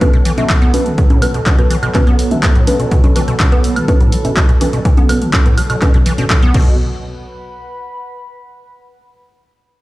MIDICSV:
0, 0, Header, 1, 6, 480
1, 0, Start_track
1, 0, Tempo, 483871
1, 972, Time_signature, 4, 2, 24, 8
1, 9737, End_track
2, 0, Start_track
2, 0, Title_t, "Ambient pad"
2, 0, Program_c, 0, 92
2, 0, Note_on_c, 0, 71, 75
2, 0, Note_on_c, 0, 78, 80
2, 0, Note_on_c, 0, 81, 73
2, 6477, Note_off_c, 0, 71, 0
2, 6489, Note_on_c, 0, 71, 76
2, 6492, Note_off_c, 0, 78, 0
2, 6493, Note_off_c, 0, 81, 0
2, 6566, Note_on_c, 0, 78, 76
2, 6878, Note_on_c, 0, 83, 78
2, 8371, Note_off_c, 0, 71, 0
2, 8373, Note_off_c, 0, 78, 0
2, 8613, Note_off_c, 0, 83, 0
2, 9737, End_track
3, 0, Start_track
3, 0, Title_t, "Synth stab"
3, 0, Program_c, 1, 62
3, 12, Note_on_c, 1, 59, 91
3, 12, Note_on_c, 1, 66, 83
3, 12, Note_on_c, 1, 71, 102
3, 117, Note_off_c, 1, 59, 0
3, 117, Note_off_c, 1, 66, 0
3, 117, Note_off_c, 1, 71, 0
3, 374, Note_on_c, 1, 59, 98
3, 374, Note_on_c, 1, 66, 86
3, 374, Note_on_c, 1, 76, 104
3, 538, Note_off_c, 1, 59, 0
3, 538, Note_off_c, 1, 66, 0
3, 538, Note_off_c, 1, 76, 0
3, 732, Note_on_c, 1, 59, 92
3, 732, Note_on_c, 1, 66, 86
3, 732, Note_on_c, 1, 71, 105
3, 899, Note_off_c, 1, 59, 0
3, 899, Note_off_c, 1, 66, 0
3, 899, Note_off_c, 1, 71, 0
3, 1212, Note_on_c, 1, 59, 84
3, 1213, Note_on_c, 1, 66, 78
3, 1213, Note_on_c, 1, 71, 92
3, 1317, Note_off_c, 1, 59, 0
3, 1317, Note_off_c, 1, 66, 0
3, 1317, Note_off_c, 1, 71, 0
3, 1573, Note_on_c, 1, 59, 81
3, 1574, Note_on_c, 1, 66, 77
3, 1574, Note_on_c, 1, 71, 90
3, 1738, Note_off_c, 1, 59, 0
3, 1738, Note_off_c, 1, 66, 0
3, 1738, Note_off_c, 1, 71, 0
3, 1931, Note_on_c, 1, 59, 92
3, 1931, Note_on_c, 1, 66, 87
3, 1932, Note_on_c, 1, 71, 100
3, 2036, Note_off_c, 1, 59, 0
3, 2036, Note_off_c, 1, 66, 0
3, 2036, Note_off_c, 1, 71, 0
3, 2294, Note_on_c, 1, 66, 88
3, 2294, Note_on_c, 1, 76, 108
3, 2295, Note_on_c, 1, 59, 96
3, 2458, Note_off_c, 1, 66, 0
3, 2458, Note_off_c, 1, 76, 0
3, 2459, Note_off_c, 1, 59, 0
3, 2652, Note_on_c, 1, 59, 93
3, 2652, Note_on_c, 1, 66, 88
3, 2652, Note_on_c, 1, 71, 103
3, 2819, Note_off_c, 1, 59, 0
3, 2819, Note_off_c, 1, 66, 0
3, 2819, Note_off_c, 1, 71, 0
3, 3132, Note_on_c, 1, 59, 84
3, 3132, Note_on_c, 1, 66, 77
3, 3132, Note_on_c, 1, 71, 93
3, 3237, Note_off_c, 1, 59, 0
3, 3237, Note_off_c, 1, 66, 0
3, 3237, Note_off_c, 1, 71, 0
3, 3494, Note_on_c, 1, 59, 81
3, 3494, Note_on_c, 1, 66, 77
3, 3494, Note_on_c, 1, 71, 91
3, 3658, Note_off_c, 1, 59, 0
3, 3658, Note_off_c, 1, 66, 0
3, 3658, Note_off_c, 1, 71, 0
3, 3852, Note_on_c, 1, 59, 93
3, 3852, Note_on_c, 1, 66, 84
3, 3852, Note_on_c, 1, 71, 100
3, 3957, Note_off_c, 1, 59, 0
3, 3957, Note_off_c, 1, 66, 0
3, 3957, Note_off_c, 1, 71, 0
3, 4213, Note_on_c, 1, 59, 94
3, 4213, Note_on_c, 1, 66, 87
3, 4213, Note_on_c, 1, 76, 104
3, 4378, Note_off_c, 1, 59, 0
3, 4378, Note_off_c, 1, 66, 0
3, 4378, Note_off_c, 1, 76, 0
3, 4572, Note_on_c, 1, 59, 94
3, 4572, Note_on_c, 1, 66, 84
3, 4572, Note_on_c, 1, 71, 106
3, 4738, Note_off_c, 1, 59, 0
3, 4738, Note_off_c, 1, 71, 0
3, 4739, Note_off_c, 1, 66, 0
3, 5052, Note_on_c, 1, 59, 85
3, 5052, Note_on_c, 1, 66, 76
3, 5053, Note_on_c, 1, 71, 92
3, 5157, Note_off_c, 1, 59, 0
3, 5157, Note_off_c, 1, 66, 0
3, 5157, Note_off_c, 1, 71, 0
3, 5413, Note_on_c, 1, 59, 83
3, 5413, Note_on_c, 1, 66, 75
3, 5413, Note_on_c, 1, 71, 89
3, 5578, Note_off_c, 1, 59, 0
3, 5578, Note_off_c, 1, 66, 0
3, 5578, Note_off_c, 1, 71, 0
3, 5771, Note_on_c, 1, 59, 93
3, 5771, Note_on_c, 1, 66, 84
3, 5772, Note_on_c, 1, 71, 100
3, 5877, Note_off_c, 1, 59, 0
3, 5877, Note_off_c, 1, 66, 0
3, 5877, Note_off_c, 1, 71, 0
3, 6132, Note_on_c, 1, 74, 90
3, 6133, Note_on_c, 1, 59, 83
3, 6133, Note_on_c, 1, 66, 73
3, 6297, Note_off_c, 1, 74, 0
3, 6298, Note_off_c, 1, 59, 0
3, 6298, Note_off_c, 1, 66, 0
3, 6491, Note_on_c, 1, 59, 88
3, 6491, Note_on_c, 1, 66, 82
3, 6491, Note_on_c, 1, 71, 96
3, 6671, Note_off_c, 1, 59, 0
3, 6671, Note_off_c, 1, 66, 0
3, 6671, Note_off_c, 1, 71, 0
3, 9737, End_track
4, 0, Start_track
4, 0, Title_t, "Analog synth pad"
4, 0, Program_c, 2, 89
4, 0, Note_on_c, 2, 47, 80
4, 0, Note_on_c, 2, 54, 72
4, 0, Note_on_c, 2, 69, 88
4, 6452, Note_off_c, 2, 69, 0
4, 6453, Note_off_c, 2, 47, 0
4, 6454, Note_off_c, 2, 54, 0
4, 6490, Note_on_c, 2, 66, 82
4, 6491, Note_on_c, 2, 47, 75
4, 6491, Note_on_c, 2, 54, 67
4, 6714, Note_off_c, 2, 47, 0
4, 6714, Note_off_c, 2, 66, 0
4, 6715, Note_off_c, 2, 54, 0
4, 9737, End_track
5, 0, Start_track
5, 0, Title_t, "Acid bass"
5, 0, Program_c, 3, 38
5, 11, Note_on_c, 3, 47, 81
5, 112, Note_off_c, 3, 47, 0
5, 134, Note_on_c, 3, 47, 101
5, 173, Note_off_c, 3, 47, 0
5, 253, Note_on_c, 3, 52, 100
5, 319, Note_off_c, 3, 52, 0
5, 374, Note_on_c, 3, 47, 104
5, 439, Note_off_c, 3, 47, 0
5, 492, Note_on_c, 3, 52, 106
5, 532, Note_off_c, 3, 52, 0
5, 613, Note_on_c, 3, 59, 98
5, 853, Note_on_c, 3, 50, 75
5, 868, Note_off_c, 3, 59, 0
5, 971, Note_on_c, 3, 47, 84
5, 986, Note_off_c, 3, 50, 0
5, 1039, Note_off_c, 3, 47, 0
5, 1093, Note_on_c, 3, 45, 78
5, 1211, Note_on_c, 3, 59, 79
5, 1226, Note_off_c, 3, 45, 0
5, 1252, Note_off_c, 3, 59, 0
5, 1334, Note_on_c, 3, 47, 75
5, 1399, Note_off_c, 3, 47, 0
5, 1452, Note_on_c, 3, 47, 85
5, 1552, Note_off_c, 3, 47, 0
5, 1572, Note_on_c, 3, 47, 105
5, 1612, Note_off_c, 3, 47, 0
5, 1690, Note_on_c, 3, 52, 100
5, 1758, Note_off_c, 3, 52, 0
5, 1812, Note_on_c, 3, 47, 101
5, 1878, Note_off_c, 3, 47, 0
5, 1930, Note_on_c, 3, 52, 102
5, 1971, Note_off_c, 3, 52, 0
5, 2053, Note_on_c, 3, 59, 102
5, 2293, Note_on_c, 3, 50, 77
5, 2308, Note_off_c, 3, 59, 0
5, 2411, Note_on_c, 3, 47, 86
5, 2426, Note_off_c, 3, 50, 0
5, 2478, Note_off_c, 3, 47, 0
5, 2533, Note_on_c, 3, 45, 76
5, 2650, Note_on_c, 3, 59, 79
5, 2665, Note_off_c, 3, 45, 0
5, 2691, Note_off_c, 3, 59, 0
5, 2772, Note_on_c, 3, 47, 76
5, 2838, Note_off_c, 3, 47, 0
5, 2891, Note_on_c, 3, 47, 82
5, 2992, Note_off_c, 3, 47, 0
5, 3013, Note_on_c, 3, 47, 103
5, 3053, Note_off_c, 3, 47, 0
5, 3131, Note_on_c, 3, 52, 106
5, 3198, Note_off_c, 3, 52, 0
5, 3252, Note_on_c, 3, 47, 100
5, 3318, Note_off_c, 3, 47, 0
5, 3372, Note_on_c, 3, 52, 104
5, 3412, Note_off_c, 3, 52, 0
5, 3494, Note_on_c, 3, 59, 103
5, 3733, Note_on_c, 3, 50, 78
5, 3748, Note_off_c, 3, 59, 0
5, 3852, Note_on_c, 3, 47, 84
5, 3867, Note_off_c, 3, 50, 0
5, 3919, Note_off_c, 3, 47, 0
5, 3974, Note_on_c, 3, 45, 77
5, 4093, Note_on_c, 3, 59, 76
5, 4108, Note_off_c, 3, 45, 0
5, 4133, Note_off_c, 3, 59, 0
5, 4214, Note_on_c, 3, 47, 76
5, 4279, Note_off_c, 3, 47, 0
5, 4333, Note_on_c, 3, 47, 85
5, 4433, Note_off_c, 3, 47, 0
5, 4454, Note_on_c, 3, 47, 101
5, 4493, Note_off_c, 3, 47, 0
5, 4573, Note_on_c, 3, 52, 100
5, 4639, Note_off_c, 3, 52, 0
5, 4694, Note_on_c, 3, 47, 100
5, 4759, Note_off_c, 3, 47, 0
5, 4813, Note_on_c, 3, 52, 100
5, 4853, Note_off_c, 3, 52, 0
5, 4935, Note_on_c, 3, 59, 104
5, 5173, Note_on_c, 3, 50, 78
5, 5188, Note_off_c, 3, 59, 0
5, 5292, Note_on_c, 3, 47, 85
5, 5306, Note_off_c, 3, 50, 0
5, 5359, Note_off_c, 3, 47, 0
5, 5414, Note_on_c, 3, 45, 79
5, 5532, Note_on_c, 3, 59, 78
5, 5547, Note_off_c, 3, 45, 0
5, 5572, Note_off_c, 3, 59, 0
5, 5654, Note_on_c, 3, 47, 76
5, 5719, Note_off_c, 3, 47, 0
5, 5773, Note_on_c, 3, 47, 85
5, 5873, Note_off_c, 3, 47, 0
5, 5894, Note_on_c, 3, 47, 101
5, 5933, Note_off_c, 3, 47, 0
5, 6014, Note_on_c, 3, 52, 101
5, 6080, Note_off_c, 3, 52, 0
5, 6134, Note_on_c, 3, 47, 102
5, 6199, Note_off_c, 3, 47, 0
5, 6252, Note_on_c, 3, 52, 102
5, 6292, Note_off_c, 3, 52, 0
5, 6374, Note_on_c, 3, 59, 100
5, 6487, Note_off_c, 3, 59, 0
5, 6493, Note_on_c, 3, 47, 92
5, 6716, Note_off_c, 3, 47, 0
5, 9737, End_track
6, 0, Start_track
6, 0, Title_t, "Drums"
6, 12, Note_on_c, 9, 42, 50
6, 12, Note_on_c, 9, 63, 59
6, 13, Note_on_c, 9, 36, 120
6, 111, Note_off_c, 9, 42, 0
6, 111, Note_off_c, 9, 63, 0
6, 112, Note_off_c, 9, 36, 0
6, 133, Note_on_c, 9, 42, 25
6, 233, Note_off_c, 9, 42, 0
6, 251, Note_on_c, 9, 46, 104
6, 350, Note_off_c, 9, 46, 0
6, 373, Note_on_c, 9, 42, 50
6, 373, Note_on_c, 9, 63, 38
6, 473, Note_off_c, 9, 42, 0
6, 473, Note_off_c, 9, 63, 0
6, 492, Note_on_c, 9, 39, 116
6, 492, Note_on_c, 9, 42, 52
6, 493, Note_on_c, 9, 36, 117
6, 591, Note_off_c, 9, 42, 0
6, 592, Note_off_c, 9, 36, 0
6, 592, Note_off_c, 9, 39, 0
6, 613, Note_on_c, 9, 42, 25
6, 712, Note_off_c, 9, 42, 0
6, 732, Note_on_c, 9, 46, 104
6, 732, Note_on_c, 9, 63, 60
6, 831, Note_off_c, 9, 46, 0
6, 831, Note_off_c, 9, 63, 0
6, 852, Note_on_c, 9, 42, 51
6, 951, Note_off_c, 9, 42, 0
6, 971, Note_on_c, 9, 42, 51
6, 973, Note_on_c, 9, 36, 115
6, 1070, Note_off_c, 9, 42, 0
6, 1072, Note_off_c, 9, 36, 0
6, 1092, Note_on_c, 9, 42, 26
6, 1092, Note_on_c, 9, 63, 55
6, 1191, Note_off_c, 9, 42, 0
6, 1191, Note_off_c, 9, 63, 0
6, 1211, Note_on_c, 9, 46, 103
6, 1211, Note_on_c, 9, 76, 91
6, 1310, Note_off_c, 9, 46, 0
6, 1310, Note_off_c, 9, 76, 0
6, 1333, Note_on_c, 9, 42, 51
6, 1432, Note_off_c, 9, 42, 0
6, 1451, Note_on_c, 9, 42, 50
6, 1451, Note_on_c, 9, 63, 39
6, 1452, Note_on_c, 9, 36, 113
6, 1452, Note_on_c, 9, 39, 109
6, 1551, Note_off_c, 9, 39, 0
6, 1551, Note_off_c, 9, 42, 0
6, 1551, Note_off_c, 9, 63, 0
6, 1552, Note_off_c, 9, 36, 0
6, 1574, Note_on_c, 9, 42, 26
6, 1673, Note_off_c, 9, 42, 0
6, 1692, Note_on_c, 9, 46, 105
6, 1791, Note_off_c, 9, 46, 0
6, 1814, Note_on_c, 9, 42, 51
6, 1814, Note_on_c, 9, 76, 85
6, 1913, Note_off_c, 9, 42, 0
6, 1913, Note_off_c, 9, 76, 0
6, 1932, Note_on_c, 9, 39, 58
6, 1932, Note_on_c, 9, 42, 51
6, 1932, Note_on_c, 9, 63, 58
6, 1933, Note_on_c, 9, 36, 114
6, 2031, Note_off_c, 9, 39, 0
6, 2031, Note_off_c, 9, 42, 0
6, 2031, Note_off_c, 9, 63, 0
6, 2032, Note_off_c, 9, 36, 0
6, 2053, Note_on_c, 9, 42, 26
6, 2152, Note_off_c, 9, 42, 0
6, 2172, Note_on_c, 9, 46, 99
6, 2271, Note_off_c, 9, 46, 0
6, 2294, Note_on_c, 9, 42, 51
6, 2294, Note_on_c, 9, 63, 38
6, 2393, Note_off_c, 9, 42, 0
6, 2393, Note_off_c, 9, 63, 0
6, 2412, Note_on_c, 9, 42, 53
6, 2413, Note_on_c, 9, 36, 113
6, 2413, Note_on_c, 9, 39, 117
6, 2511, Note_off_c, 9, 42, 0
6, 2512, Note_off_c, 9, 36, 0
6, 2512, Note_off_c, 9, 39, 0
6, 2534, Note_on_c, 9, 42, 26
6, 2633, Note_off_c, 9, 42, 0
6, 2652, Note_on_c, 9, 46, 104
6, 2652, Note_on_c, 9, 63, 58
6, 2751, Note_off_c, 9, 46, 0
6, 2751, Note_off_c, 9, 63, 0
6, 2773, Note_on_c, 9, 42, 53
6, 2872, Note_off_c, 9, 42, 0
6, 2891, Note_on_c, 9, 42, 53
6, 2892, Note_on_c, 9, 36, 114
6, 2990, Note_off_c, 9, 42, 0
6, 2991, Note_off_c, 9, 36, 0
6, 3013, Note_on_c, 9, 42, 27
6, 3013, Note_on_c, 9, 63, 55
6, 3112, Note_off_c, 9, 42, 0
6, 3112, Note_off_c, 9, 63, 0
6, 3132, Note_on_c, 9, 46, 102
6, 3231, Note_off_c, 9, 46, 0
6, 3253, Note_on_c, 9, 42, 54
6, 3352, Note_off_c, 9, 42, 0
6, 3371, Note_on_c, 9, 42, 53
6, 3371, Note_on_c, 9, 63, 37
6, 3372, Note_on_c, 9, 36, 113
6, 3372, Note_on_c, 9, 39, 114
6, 3471, Note_off_c, 9, 36, 0
6, 3471, Note_off_c, 9, 39, 0
6, 3471, Note_off_c, 9, 42, 0
6, 3471, Note_off_c, 9, 63, 0
6, 3493, Note_on_c, 9, 42, 28
6, 3593, Note_off_c, 9, 42, 0
6, 3612, Note_on_c, 9, 46, 101
6, 3711, Note_off_c, 9, 46, 0
6, 3734, Note_on_c, 9, 42, 54
6, 3734, Note_on_c, 9, 76, 81
6, 3833, Note_off_c, 9, 42, 0
6, 3833, Note_off_c, 9, 76, 0
6, 3852, Note_on_c, 9, 36, 112
6, 3852, Note_on_c, 9, 42, 54
6, 3852, Note_on_c, 9, 63, 56
6, 3951, Note_off_c, 9, 36, 0
6, 3951, Note_off_c, 9, 42, 0
6, 3951, Note_off_c, 9, 63, 0
6, 3973, Note_on_c, 9, 42, 27
6, 4072, Note_off_c, 9, 42, 0
6, 4091, Note_on_c, 9, 46, 99
6, 4190, Note_off_c, 9, 46, 0
6, 4213, Note_on_c, 9, 42, 55
6, 4213, Note_on_c, 9, 63, 37
6, 4312, Note_off_c, 9, 42, 0
6, 4312, Note_off_c, 9, 63, 0
6, 4331, Note_on_c, 9, 42, 56
6, 4332, Note_on_c, 9, 36, 113
6, 4332, Note_on_c, 9, 39, 118
6, 4431, Note_off_c, 9, 36, 0
6, 4431, Note_off_c, 9, 39, 0
6, 4431, Note_off_c, 9, 42, 0
6, 4454, Note_on_c, 9, 42, 27
6, 4553, Note_off_c, 9, 42, 0
6, 4572, Note_on_c, 9, 46, 102
6, 4572, Note_on_c, 9, 63, 59
6, 4672, Note_off_c, 9, 46, 0
6, 4672, Note_off_c, 9, 63, 0
6, 4694, Note_on_c, 9, 42, 56
6, 4793, Note_off_c, 9, 42, 0
6, 4812, Note_on_c, 9, 36, 114
6, 4812, Note_on_c, 9, 42, 53
6, 4911, Note_off_c, 9, 36, 0
6, 4911, Note_off_c, 9, 42, 0
6, 4934, Note_on_c, 9, 42, 27
6, 4934, Note_on_c, 9, 63, 57
6, 5033, Note_off_c, 9, 42, 0
6, 5033, Note_off_c, 9, 63, 0
6, 5052, Note_on_c, 9, 46, 107
6, 5052, Note_on_c, 9, 76, 84
6, 5151, Note_off_c, 9, 46, 0
6, 5151, Note_off_c, 9, 76, 0
6, 5174, Note_on_c, 9, 42, 55
6, 5273, Note_off_c, 9, 42, 0
6, 5292, Note_on_c, 9, 36, 117
6, 5292, Note_on_c, 9, 42, 54
6, 5292, Note_on_c, 9, 63, 38
6, 5293, Note_on_c, 9, 39, 120
6, 5391, Note_off_c, 9, 36, 0
6, 5391, Note_off_c, 9, 42, 0
6, 5391, Note_off_c, 9, 63, 0
6, 5392, Note_off_c, 9, 39, 0
6, 5413, Note_on_c, 9, 42, 28
6, 5512, Note_off_c, 9, 42, 0
6, 5531, Note_on_c, 9, 46, 103
6, 5531, Note_on_c, 9, 76, 85
6, 5630, Note_off_c, 9, 46, 0
6, 5630, Note_off_c, 9, 76, 0
6, 5652, Note_on_c, 9, 42, 56
6, 5652, Note_on_c, 9, 76, 77
6, 5751, Note_off_c, 9, 42, 0
6, 5751, Note_off_c, 9, 76, 0
6, 5771, Note_on_c, 9, 39, 62
6, 5771, Note_on_c, 9, 42, 56
6, 5771, Note_on_c, 9, 63, 59
6, 5772, Note_on_c, 9, 36, 114
6, 5870, Note_off_c, 9, 42, 0
6, 5870, Note_off_c, 9, 63, 0
6, 5871, Note_off_c, 9, 36, 0
6, 5871, Note_off_c, 9, 39, 0
6, 5892, Note_on_c, 9, 42, 28
6, 5992, Note_off_c, 9, 42, 0
6, 6010, Note_on_c, 9, 46, 99
6, 6110, Note_off_c, 9, 46, 0
6, 6132, Note_on_c, 9, 42, 54
6, 6132, Note_on_c, 9, 63, 38
6, 6231, Note_off_c, 9, 42, 0
6, 6231, Note_off_c, 9, 63, 0
6, 6251, Note_on_c, 9, 42, 57
6, 6252, Note_on_c, 9, 36, 113
6, 6252, Note_on_c, 9, 39, 122
6, 6351, Note_off_c, 9, 36, 0
6, 6351, Note_off_c, 9, 39, 0
6, 6351, Note_off_c, 9, 42, 0
6, 6373, Note_on_c, 9, 42, 27
6, 6472, Note_off_c, 9, 42, 0
6, 6491, Note_on_c, 9, 49, 87
6, 6492, Note_on_c, 9, 36, 108
6, 6590, Note_off_c, 9, 49, 0
6, 6592, Note_off_c, 9, 36, 0
6, 9737, End_track
0, 0, End_of_file